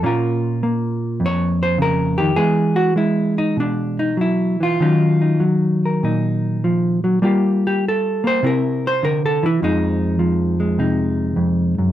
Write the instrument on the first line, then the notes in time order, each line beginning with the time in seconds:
hollow-body jazz guitar
0.03 A#2 A#3 C#4 F4 A#4
0.63 A#3
1.20 F2
1.26 C#5
1.63 C5
1.78 C#3 A#4
2.18 D#3 G4
2.36 E3 G#3 B3 G#4
2.76 F#4
2.96 G#3 E4
3.38 D#4
3.57 B2 D4
3.99 D#4
4.17 F#3
4.21 E4
4.60 E3 F4
4.80 D#3 F#3 C#4 D#4
5.21 D#4
5.40 F#3
5.85 A#4
6.03 A#2 D#4
6.64 F3
7.04 F#3
7.22 G3 A#3 F4 G4
7.67 G4
7.88 A4
8.24 A#3 C5
8.43 C3 C4 E4 A#4
8.87 C5
9.03 D3 A#4
9.26 A4
9.43 E3 E4
9.62 F2 F3 G#3 D#4
10.19 F3
10.60 G#3
10.79 C3 D#4
11.36 F2
11.78 F#2